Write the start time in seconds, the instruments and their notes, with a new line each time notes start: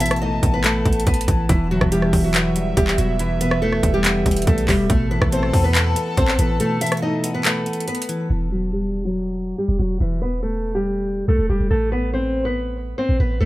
Already playing: 808-style bass A1, clean electric guitar B2 B3, analog synth pad A5
0.00 clean electric guitar E3, nylon-string guitar E4 E5, closed hi-hat
0.06 closed hi-hat
0.11 cross-stick, closed hi-hat
0.16 closed hi-hat
0.22 clean electric guitar A3, nylon-string guitar D#4 D#5
0.43 808-style bass A1, clean electric guitar B3, kick, closed hi-hat
0.54 nylon-string guitar B3 B4
0.64 nylon-string guitar A3 A4, clean electric guitar B4, clap, closed hi-hat
0.85 808-style bass A1, clean electric guitar B3, kick, closed hi-hat
0.93 closed hi-hat
1.00 closed hi-hat
1.07 808-style bass A1, nylon-string guitar B3 B4, kick, closed hi-hat
1.14 closed hi-hat
1.21 closed hi-hat
1.28 808-style bass A1, clean electric guitar E3, kick, closed hi-hat
1.49 808-style bass E1, clean electric guitar E2, nylon-string guitar E3 E4, analog synth pad E5, kick, closed hi-hat
1.71 clean electric guitar B2, nylon-string guitar F#3 F#4
1.81 808-style bass E1, kick, cross-stick
1.92 clean electric guitar E3, nylon-string guitar G3 G4, closed hi-hat
2.02 cross-stick
2.13 808-style bass E1, kick, open hi-hat
2.24 nylon-string guitar F#3 F#4
2.34 clean electric guitar B3, clap, closed hi-hat
2.56 clean electric guitar G3, closed hi-hat
2.77 808-style bass E1, nylon-string guitar G3 G4, kick, closed hi-hat
2.88 clap
2.98 808-style bass E1, clean electric guitar B2, nylon-string guitar F#3 F#4, closed hi-hat
3.19 clean electric guitar E2, nylon-string guitar E3 E4, closed hi-hat
3.41 clean electric guitar B2, nylon-string guitar B3 B4, closed hi-hat
3.51 cross-stick
3.62 clean electric guitar E3, nylon-string guitar A3 A4
3.73 cross-stick
3.83 808-style bass E1, clean electric guitar G3, kick, closed hi-hat
3.94 nylon-string guitar G3 G4
4.04 clean electric guitar B3, clap, closed hi-hat
4.26 808-style bass E1, clean electric guitar G3, kick, closed hi-hat
4.31 closed hi-hat
4.37 closed hi-hat
4.42 closed hi-hat
4.47 808-style bass B1, nylon-string guitar A3 A4, kick, closed hi-hat
4.58 closed hi-hat
4.68 808-style bass E1, clean electric guitar B2, nylon-string guitar G3 G4, kick, clap, open hi-hat
4.90 808-style bass A1, clean electric guitar B2, nylon-string guitar A3 A4, analog synth pad A4 A5, kick, closed hi-hat
5.11 clean electric guitar E3, nylon-string guitar B3 B4
5.22 808-style bass A1, kick, cross-stick
5.32 clean electric guitar A3, nylon-string guitar C4 C5, closed hi-hat
5.43 cross-stick
5.53 808-style bass E2, clean electric guitar B3, kick, open hi-hat
5.64 nylon-string guitar B3 B4
5.75 clean electric guitar B4, clap, closed hi-hat
5.96 clean electric guitar B3, closed hi-hat
6.17 808-style bass A1, nylon-string guitar C4 C5, kick, closed hi-hat
6.28 clap
6.39 808-style bass A1, clean electric guitar E3, nylon-string guitar B3 B4, closed hi-hat
6.60 clean electric guitar B2, nylon-string guitar A3 A4, closed hi-hat
6.81 clean electric guitar E3, nylon-string guitar E4 E5, closed hi-hat
6.86 closed hi-hat
6.92 cross-stick, closed hi-hat
6.97 closed hi-hat
7.02 clean electric guitar A3, nylon-string guitar D#4 D#5
7.24 clean electric guitar B3, closed hi-hat
7.34 nylon-string guitar B3 B4
7.45 nylon-string guitar A3 A4, clean electric guitar B4, clap, closed hi-hat
7.66 clean electric guitar B3, closed hi-hat
7.73 closed hi-hat
7.80 closed hi-hat
7.88 nylon-string guitar B3 B4, closed hi-hat
7.95 closed hi-hat
8.02 closed hi-hat
8.09 clean electric guitar E3, closed hi-hat
8.30 808-style bass E1, nylon-string guitar E3 E4
8.52 nylon-string guitar F#3 F#4
8.73 nylon-string guitar G3 G4
9.05 nylon-string guitar F#3 F#4
9.58 nylon-string guitar G3 G4
9.68 808-style bass E1
9.79 808-style bass E1, nylon-string guitar F#3 F#4
10.00 808-style bass E1, nylon-string guitar E3 E4
10.22 nylon-string guitar B3 B4
10.43 nylon-string guitar A3 A4
10.75 nylon-string guitar G3 G4
11.28 808-style bass B1, nylon-string guitar A3 A4
11.39 808-style bass E1
11.49 808-style bass E1, nylon-string guitar G3 G4
11.60 808-style bass E1
11.71 808-style bass A1, nylon-string guitar A3 A4
11.92 nylon-string guitar B3 B4
12.13 nylon-string guitar C4 C5
12.45 nylon-string guitar B3 B4
12.98 nylon-string guitar C4 C5
13.09 808-style bass A1
13.20 808-style bass A1, nylon-string guitar B3 B4
13.40 808-style bass A1, nylon-string guitar A3 A4